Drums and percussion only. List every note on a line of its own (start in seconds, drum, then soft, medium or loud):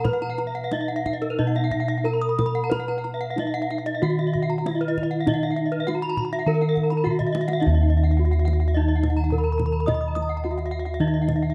0.05 kendang high soft
0.05 kendang low medium
0.22 kendang slap soft
0.38 kendang slap soft
0.71 kendang slap soft
0.71 kendang high soft
1.06 kendang slap soft
1.06 kendang low medium
1.22 kendang slap soft
1.55 kendang slap soft
1.71 kendang low soft
2.05 kendang slap soft
2.39 kendang slap soft
2.39 kendang high medium
2.39 kendang low soft
2.71 kendang high soft
2.71 kendang low soft
2.88 kendang slap soft
3.05 kendang slap soft
3.38 kendang slap soft
3.38 kendang high soft
3.70 kendang slap soft
3.86 kendang slap soft
4.03 kendang high soft
4.19 kendang slap soft
4.35 kendang low soft
4.66 kendang slap soft
4.66 kendang high soft
4.97 kendang slap soft
4.97 kendang low soft
5.27 kendang high soft
5.27 kendang low soft
5.43 kendang slap soft
5.58 kendang slap soft
5.88 kendang slap soft
5.88 kendang high soft
6.17 kendang slap soft
6.17 kendang low soft
6.33 kendang slap soft
6.62 kendang slap soft
6.77 kendang low soft
6.92 kendang slap soft
7.06 kendang low soft
7.20 kendang low soft
7.35 kendang high soft
7.48 kendang high soft
7.62 kendang high soft
7.62 kendang low soft
8.33 kendang slap soft
8.48 kendang high soft
8.61 kendang slap soft
8.76 kendang slap soft
9.03 kendang slap soft
9.03 kendang high soft
9.03 kendang low soft
9.31 kendang low soft
9.59 kendang slap soft
9.59 kendang high soft
9.59 kendang low soft
9.88 kendang high soft
9.88 kendang low soft
10.16 kendang high soft
10.59 kendang slap soft
10.86 kendang slap soft
11.00 kendang slap soft
11.28 kendang slap soft
11.28 kendang high soft
11.28 kendang low soft